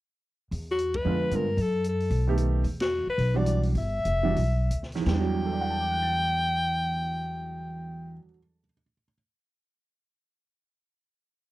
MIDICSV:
0, 0, Header, 1, 6, 480
1, 0, Start_track
1, 0, Key_signature, 1, "minor"
1, 0, Tempo, 266312
1, 930, Time_signature, 4, 2, 24, 8
1, 5733, Tempo, 283554
1, 6693, Tempo, 309438
1, 7653, Tempo, 349447
1, 8613, Tempo, 376412
1, 16833, End_track
2, 0, Start_track
2, 0, Title_t, "Alto saxophone"
2, 0, Program_c, 0, 65
2, 1280, Note_on_c, 0, 66, 86
2, 1742, Note_on_c, 0, 71, 100
2, 1769, Note_off_c, 0, 66, 0
2, 2444, Note_on_c, 0, 70, 88
2, 2471, Note_off_c, 0, 71, 0
2, 2915, Note_on_c, 0, 69, 94
2, 2942, Note_off_c, 0, 70, 0
2, 3360, Note_off_c, 0, 69, 0
2, 3398, Note_on_c, 0, 69, 75
2, 4256, Note_off_c, 0, 69, 0
2, 5070, Note_on_c, 0, 66, 85
2, 5512, Note_off_c, 0, 66, 0
2, 5581, Note_on_c, 0, 71, 94
2, 6056, Note_on_c, 0, 74, 83
2, 6081, Note_off_c, 0, 71, 0
2, 6515, Note_off_c, 0, 74, 0
2, 6743, Note_on_c, 0, 76, 107
2, 8374, Note_off_c, 0, 76, 0
2, 8631, Note_on_c, 0, 79, 104
2, 12609, Note_off_c, 0, 79, 0
2, 16833, End_track
3, 0, Start_track
3, 0, Title_t, "Grand piano"
3, 0, Program_c, 1, 0
3, 1886, Note_on_c, 1, 50, 53
3, 1894, Note_on_c, 1, 56, 53
3, 1913, Note_on_c, 1, 59, 55
3, 1926, Note_on_c, 1, 65, 69
3, 2338, Note_off_c, 1, 50, 0
3, 2351, Note_off_c, 1, 56, 0
3, 2360, Note_off_c, 1, 59, 0
3, 2365, Note_on_c, 1, 50, 42
3, 2367, Note_off_c, 1, 65, 0
3, 2380, Note_on_c, 1, 56, 42
3, 2392, Note_on_c, 1, 59, 41
3, 2400, Note_on_c, 1, 65, 47
3, 2623, Note_off_c, 1, 50, 0
3, 2630, Note_off_c, 1, 56, 0
3, 2636, Note_off_c, 1, 59, 0
3, 2640, Note_off_c, 1, 65, 0
3, 4101, Note_on_c, 1, 51, 63
3, 4113, Note_on_c, 1, 57, 66
3, 4122, Note_on_c, 1, 59, 55
3, 4127, Note_on_c, 1, 67, 72
3, 4730, Note_off_c, 1, 51, 0
3, 4736, Note_off_c, 1, 57, 0
3, 4740, Note_off_c, 1, 59, 0
3, 4743, Note_off_c, 1, 67, 0
3, 6009, Note_on_c, 1, 52, 61
3, 6017, Note_on_c, 1, 55, 53
3, 6026, Note_on_c, 1, 62, 57
3, 6038, Note_on_c, 1, 66, 68
3, 6652, Note_off_c, 1, 52, 0
3, 6656, Note_off_c, 1, 55, 0
3, 6660, Note_off_c, 1, 62, 0
3, 6666, Note_off_c, 1, 66, 0
3, 7440, Note_on_c, 1, 52, 72
3, 7446, Note_on_c, 1, 55, 60
3, 7462, Note_on_c, 1, 62, 61
3, 7470, Note_on_c, 1, 66, 67
3, 7627, Note_off_c, 1, 52, 0
3, 7630, Note_off_c, 1, 55, 0
3, 7638, Note_off_c, 1, 62, 0
3, 7642, Note_off_c, 1, 66, 0
3, 8458, Note_on_c, 1, 40, 74
3, 8542, Note_on_c, 1, 52, 67
3, 8625, Note_on_c, 1, 55, 60
3, 8710, Note_on_c, 1, 62, 59
3, 8788, Note_on_c, 1, 54, 82
3, 9113, Note_on_c, 1, 69, 41
3, 9203, Note_on_c, 1, 74, 35
3, 9308, Note_on_c, 1, 78, 37
3, 9428, Note_on_c, 1, 81, 40
3, 9551, Note_on_c, 1, 86, 36
3, 9690, Note_on_c, 1, 90, 33
3, 9835, Note_on_c, 1, 93, 31
3, 12498, Note_off_c, 1, 40, 0
3, 12576, Note_off_c, 1, 52, 0
3, 12655, Note_off_c, 1, 55, 0
3, 12739, Note_off_c, 1, 62, 0
3, 12817, Note_off_c, 1, 54, 0
3, 13091, Note_off_c, 1, 69, 0
3, 13181, Note_off_c, 1, 74, 0
3, 13287, Note_off_c, 1, 78, 0
3, 13407, Note_off_c, 1, 81, 0
3, 13530, Note_off_c, 1, 86, 0
3, 13668, Note_off_c, 1, 90, 0
3, 13814, Note_off_c, 1, 93, 0
3, 16833, End_track
4, 0, Start_track
4, 0, Title_t, "Upright bass"
4, 0, Program_c, 2, 32
4, 925, Note_on_c, 2, 40, 77
4, 1837, Note_off_c, 2, 40, 0
4, 1890, Note_on_c, 2, 41, 73
4, 2335, Note_off_c, 2, 41, 0
4, 2363, Note_on_c, 2, 43, 65
4, 2810, Note_off_c, 2, 43, 0
4, 2831, Note_on_c, 2, 42, 83
4, 3749, Note_off_c, 2, 42, 0
4, 3792, Note_on_c, 2, 35, 81
4, 4709, Note_off_c, 2, 35, 0
4, 4750, Note_on_c, 2, 40, 73
4, 5473, Note_off_c, 2, 40, 0
4, 5729, Note_on_c, 2, 35, 81
4, 6643, Note_off_c, 2, 35, 0
4, 6692, Note_on_c, 2, 31, 80
4, 7127, Note_off_c, 2, 31, 0
4, 7165, Note_on_c, 2, 29, 72
4, 7621, Note_off_c, 2, 29, 0
4, 7647, Note_on_c, 2, 35, 75
4, 8081, Note_off_c, 2, 35, 0
4, 8115, Note_on_c, 2, 38, 63
4, 8579, Note_off_c, 2, 38, 0
4, 8606, Note_on_c, 2, 40, 86
4, 12585, Note_off_c, 2, 40, 0
4, 16833, End_track
5, 0, Start_track
5, 0, Title_t, "Muted upright bass strokes"
5, 5533, Note_on_c, 9, 29, 37
5, 5713, Note_off_c, 9, 29, 0
5, 16833, End_track
6, 0, Start_track
6, 0, Title_t, "Drums"
6, 935, Note_on_c, 9, 46, 43
6, 1115, Note_off_c, 9, 46, 0
6, 1415, Note_on_c, 9, 42, 43
6, 1595, Note_off_c, 9, 42, 0
6, 1695, Note_on_c, 9, 51, 64
6, 1703, Note_on_c, 9, 36, 66
6, 1875, Note_off_c, 9, 51, 0
6, 1883, Note_off_c, 9, 36, 0
6, 2367, Note_on_c, 9, 42, 54
6, 2547, Note_off_c, 9, 42, 0
6, 2844, Note_on_c, 9, 46, 43
6, 3024, Note_off_c, 9, 46, 0
6, 3320, Note_on_c, 9, 42, 50
6, 3500, Note_off_c, 9, 42, 0
6, 3610, Note_on_c, 9, 46, 33
6, 3791, Note_off_c, 9, 46, 0
6, 3794, Note_on_c, 9, 46, 44
6, 3974, Note_off_c, 9, 46, 0
6, 4280, Note_on_c, 9, 42, 58
6, 4460, Note_off_c, 9, 42, 0
6, 4761, Note_on_c, 9, 46, 43
6, 4942, Note_off_c, 9, 46, 0
6, 5049, Note_on_c, 9, 51, 69
6, 5058, Note_on_c, 9, 38, 84
6, 5229, Note_off_c, 9, 51, 0
6, 5238, Note_off_c, 9, 38, 0
6, 5741, Note_on_c, 9, 46, 43
6, 5910, Note_off_c, 9, 46, 0
6, 6208, Note_on_c, 9, 42, 53
6, 6377, Note_off_c, 9, 42, 0
6, 6498, Note_on_c, 9, 46, 41
6, 6667, Note_off_c, 9, 46, 0
6, 6696, Note_on_c, 9, 46, 40
6, 6851, Note_off_c, 9, 46, 0
6, 7160, Note_on_c, 9, 42, 47
6, 7316, Note_off_c, 9, 42, 0
6, 7649, Note_on_c, 9, 46, 48
6, 7787, Note_off_c, 9, 46, 0
6, 8120, Note_on_c, 9, 42, 52
6, 8257, Note_off_c, 9, 42, 0
6, 8284, Note_on_c, 9, 38, 31
6, 8413, Note_on_c, 9, 46, 37
6, 8421, Note_off_c, 9, 38, 0
6, 8455, Note_on_c, 9, 38, 42
6, 8550, Note_off_c, 9, 46, 0
6, 8592, Note_off_c, 9, 38, 0
6, 8622, Note_on_c, 9, 38, 89
6, 8749, Note_off_c, 9, 38, 0
6, 16833, End_track
0, 0, End_of_file